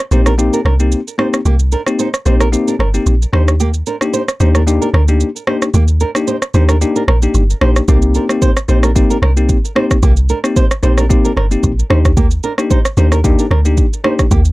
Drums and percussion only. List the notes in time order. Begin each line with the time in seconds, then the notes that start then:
0.00 shaker
0.12 shaker
0.26 cross-stick, shaker
0.39 shaker
0.53 shaker
0.66 cross-stick
0.80 shaker
0.92 shaker
1.08 shaker
1.19 cross-stick
1.34 cross-stick, shaker
1.46 shaker
1.59 shaker
1.72 shaker
1.86 cross-stick, shaker
1.99 shaker
2.14 cross-stick, shaker
2.26 shaker
2.40 cross-stick, shaker
2.53 shaker
2.68 shaker
2.80 cross-stick
2.94 shaker
3.06 shaker
3.22 shaker
3.33 cross-stick
3.48 cross-stick, shaker
3.60 shaker
3.74 shaker
3.86 shaker
4.01 cross-stick, shaker
4.14 shaker
4.28 cross-stick, shaker
4.40 shaker
4.55 cross-stick, shaker
4.68 shaker
4.82 shaker
4.94 cross-stick
5.08 shaker
5.20 shaker
5.36 shaker
5.47 cross-stick
5.62 cross-stick, shaker
5.74 shaker
5.88 shaker
6.00 shaker
6.15 cross-stick, shaker
6.28 shaker
6.42 cross-stick, shaker
6.54 shaker
6.69 cross-stick, shaker
6.81 shaker
6.96 shaker
7.08 cross-stick
7.22 shaker
7.34 shaker
7.50 shaker
7.61 cross-stick
7.76 cross-stick, shaker
7.88 kick, shaker
8.02 shaker
8.15 shaker
8.29 cross-stick, shaker
8.42 kick, shaker
8.57 cross-stick, shaker
8.69 shaker
8.83 cross-stick, shaker
8.96 kick, shaker
9.10 shaker
9.23 cross-stick
9.37 shaker
9.49 kick, shaker
9.65 shaker
9.76 cross-stick
9.91 kick, cross-stick, shaker
10.03 kick, shaker
10.17 shaker
10.29 shaker
10.44 cross-stick, shaker
10.56 kick, shaker
10.71 cross-stick, shaker
10.83 shaker
10.98 cross-stick, shaker
11.10 kick, shaker
11.25 shaker
11.37 cross-stick
11.51 shaker
11.63 kick, shaker
11.79 shaker
11.90 cross-stick
12.05 kick, cross-stick, shaker
12.17 kick, shaker
12.31 shaker
12.43 shaker
12.58 cross-stick, shaker
12.71 kick, shaker
12.85 cross-stick, shaker
12.97 shaker
13.12 cross-stick, shaker
13.24 kick, shaker
13.39 shaker
13.51 cross-stick
13.65 shaker
13.77 kick, shaker
13.93 shaker
14.04 cross-stick
14.19 kick, cross-stick, shaker
14.31 kick, shaker
14.45 shaker